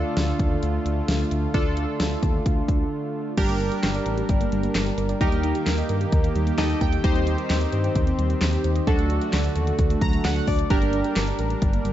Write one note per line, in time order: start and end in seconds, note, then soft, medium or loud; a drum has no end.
0.00 3.34 D3 medium
0.00 3.34 A3 medium
0.00 1.51 D4 medium
0.00 1.51 F4 medium
0.00 3.34 F4 medium
0.00 1.51 A4 medium
0.17 0.33 D2 medium
0.17 snare loud
0.17 closed hi-hat medium
0.39 0.56 D#2 medium
0.39 kick loud
0.39 closed hi-hat medium
0.63 0.79 D2 loud
0.63 closed hi-hat medium
0.86 1.02 D2 loud
0.86 closed hi-hat medium
1.08 1.24 D2 loud
1.08 snare loud
1.08 closed hi-hat medium
1.31 1.47 D2 medium
1.31 closed hi-hat medium
1.54 1.86 D2 loud
1.54 3.34 D4 medium
1.54 3.34 F4 medium
1.54 3.34 A4 medium
1.54 kick loud
1.54 closed hi-hat medium
1.77 closed hi-hat medium
2.00 2.16 D2 loud
2.00 snare loud
2.00 closed hi-hat medium
2.23 2.39 D#2 medium
2.23 kick medium
2.23 closed hi-hat medium
2.46 2.62 D2 loud
2.46 kick loud
2.46 closed hi-hat medium
2.68 2.85 D2 loud
2.68 kick loud
2.68 closed hi-hat medium
3.37 3.70 G1 loud
3.37 3.48 G3 medium
3.37 5.19 G3 medium
3.37 5.19 D4 medium
3.37 5.17 D4 medium
3.37 5.17 G4 medium
3.37 5.19 A#4 medium
3.37 5.17 A#4 medium
3.37 kick loud
3.37 closed hi-hat medium
3.37 crash loud
3.49 3.60 A#3 medium
3.49 closed hi-hat medium
3.60 3.71 D4 medium
3.60 closed hi-hat medium
3.72 3.83 G4 medium
3.72 closed hi-hat medium
3.83 3.99 G1 loud
3.83 3.94 A#4 medium
3.83 snare loud
3.83 clap medium
3.83 closed hi-hat medium
3.95 4.06 D5 medium
3.95 closed hi-hat medium
4.06 4.22 A1 medium
4.06 4.17 A#4 medium
4.06 closed hi-hat medium
4.17 4.28 G4 medium
4.17 closed hi-hat medium
4.29 4.45 G1 loud
4.29 kick loud
4.29 closed hi-hat medium
4.40 4.51 A#3 medium
4.40 closed hi-hat medium
4.52 4.68 G1 loud
4.52 4.63 G3 medium
4.52 closed hi-hat medium
4.63 4.74 A#3 medium
4.63 closed hi-hat soft
4.75 4.91 G1 loud
4.75 4.86 D4 medium
4.75 snare loud
4.75 clap loud
4.75 closed hi-hat medium
4.86 4.97 G4 medium
4.86 closed hi-hat medium
4.98 5.14 G1 loud
4.98 5.09 A#4 medium
4.98 closed hi-hat medium
5.09 5.20 D5 medium
5.09 closed hi-hat medium
5.21 5.53 D#2 loud
5.21 8.83 D#3 medium
5.21 5.31 G3 medium
5.21 7.02 A#3 medium
5.21 6.55 D#4 medium
5.21 8.83 G4 medium
5.21 6.55 G4 medium
5.21 6.55 A#4 medium
5.21 kick loud
5.21 closed hi-hat medium
5.32 5.43 A#3 medium
5.32 closed hi-hat medium
5.43 5.54 D#4 medium
5.43 closed hi-hat medium
5.55 5.66 G4 medium
5.55 closed hi-hat medium
5.66 5.83 D#2 medium
5.66 5.77 A#4 medium
5.66 snare loud
5.66 clap loud
5.66 closed hi-hat medium
5.78 5.89 D#5 medium
5.78 closed hi-hat medium
5.89 6.05 G2 medium
5.89 6.00 A#4 medium
5.89 closed hi-hat medium
6.01 6.12 G4 medium
6.01 closed hi-hat medium
6.12 6.28 D#2 loud
6.12 kick loud
6.12 closed hi-hat medium
6.24 6.35 A#3 medium
6.24 closed hi-hat medium
6.35 6.51 D#2 loud
6.35 6.46 G3 medium
6.35 closed hi-hat medium
6.47 6.57 A#3 medium
6.47 closed hi-hat soft
6.58 6.74 D#2 loud
6.58 6.69 D#4 medium
6.58 7.03 D#4 medium
6.58 7.03 G4 medium
6.58 7.04 A4 medium
6.58 6.79 D#5 medium
6.58 snare loud
6.58 clap loud
6.58 closed hi-hat medium
6.69 6.80 G4 medium
6.69 closed hi-hat medium
6.81 6.97 D#2 loud
6.81 6.92 A#4 medium
6.81 7.02 G5 medium
6.81 kick medium
6.81 closed hi-hat medium
6.92 7.03 D#5 medium
6.92 closed hi-hat medium
7.04 7.36 D#2 loud
7.04 7.15 G3 medium
7.04 8.85 C4 medium
7.04 8.83 D#4 medium
7.04 8.83 G4 medium
7.04 8.83 C5 medium
7.04 kick loud
7.04 closed hi-hat medium
7.15 7.26 C4 medium
7.15 closed hi-hat medium
7.27 7.38 D#4 medium
7.27 closed hi-hat medium
7.38 7.49 G4 medium
7.38 closed hi-hat medium
7.50 7.66 D#2 loud
7.50 7.61 C5 medium
7.50 snare loud
7.50 clap medium
7.50 closed hi-hat medium
7.61 7.72 D#5 medium
7.61 closed hi-hat medium
7.72 7.89 G2 medium
7.72 7.84 C5 medium
7.72 closed hi-hat medium
7.84 7.95 G4 medium
7.84 closed hi-hat medium
7.96 8.12 D#2 loud
7.96 kick loud
7.96 closed hi-hat medium
8.07 8.18 C4 medium
8.07 closed hi-hat medium
8.19 8.35 D#2 loud
8.19 8.29 G3 medium
8.19 closed hi-hat medium
8.30 8.41 C4 medium
8.30 closed hi-hat soft
8.41 8.57 D#2 loud
8.41 8.52 D#4 medium
8.41 snare loud
8.41 clap loud
8.41 closed hi-hat medium
8.53 8.64 G4 medium
8.53 closed hi-hat medium
8.64 8.80 D#2 medium
8.64 8.75 C5 medium
8.64 closed hi-hat medium
8.76 8.87 D#5 medium
8.76 closed hi-hat medium
8.87 9.19 D2 loud
8.87 10.69 D3 medium
8.87 8.98 F#3 medium
8.87 10.69 A3 medium
8.87 10.67 D4 medium
8.87 10.69 F#4 medium
8.87 10.67 F#4 medium
8.87 10.67 A4 medium
8.87 kick loud
8.87 closed hi-hat medium
8.99 9.10 A3 medium
8.99 closed hi-hat medium
9.10 9.21 D4 medium
9.10 closed hi-hat medium
9.22 9.32 F#4 medium
9.22 closed hi-hat medium
9.33 9.49 D2 loud
9.33 9.44 A4 medium
9.33 snare loud
9.33 clap medium
9.33 closed hi-hat medium
9.44 9.55 D5 medium
9.44 closed hi-hat medium
9.56 9.72 D#2 medium
9.56 9.67 A4 medium
9.56 closed hi-hat medium
9.67 9.78 F#4 medium
9.67 closed hi-hat medium
9.79 9.95 D2 loud
9.79 kick loud
9.79 closed hi-hat medium
9.90 10.01 A3 medium
9.90 closed hi-hat medium
10.01 10.18 D2 loud
10.01 10.12 F#3 medium
10.01 10.23 A#5 medium
10.01 kick loud
10.01 closed hi-hat medium
10.13 10.24 A3 medium
10.13 closed hi-hat soft
10.24 10.41 D2 loud
10.24 10.35 D4 medium
10.24 10.46 F#5 medium
10.24 snare loud
10.24 clap loud
10.24 closed hi-hat medium
10.36 10.47 F#4 medium
10.36 closed hi-hat medium
10.47 10.64 D2 loud
10.47 10.58 A4 medium
10.47 10.69 D5 medium
10.47 kick medium
10.47 open hi-hat medium
10.59 10.70 D5 medium
10.59 closed hi-hat medium
10.70 11.02 G1 loud
10.70 10.81 G3 medium
10.70 11.93 G3 medium
10.70 11.93 D4 medium
10.70 11.93 G4 medium
10.70 11.93 A#4 medium
10.70 kick loud
10.70 closed hi-hat medium
10.82 10.93 A#3 medium
10.82 closed hi-hat medium
10.93 11.04 D4 medium
10.93 closed hi-hat medium
11.04 11.16 G4 medium
11.04 closed hi-hat medium
11.16 11.32 G1 loud
11.16 11.27 A#4 medium
11.16 snare loud
11.16 clap loud
11.16 closed hi-hat medium
11.27 11.39 D5 medium
11.27 closed hi-hat medium
11.39 11.55 A1 medium
11.39 11.50 A#4 medium
11.39 closed hi-hat medium
11.50 11.61 G4 medium
11.50 closed hi-hat medium
11.62 11.78 G1 loud
11.62 kick loud
11.62 closed hi-hat medium
11.73 11.84 A#3 medium
11.73 closed hi-hat medium
11.85 11.93 G1 loud
11.85 11.93 G3 medium
11.85 closed hi-hat medium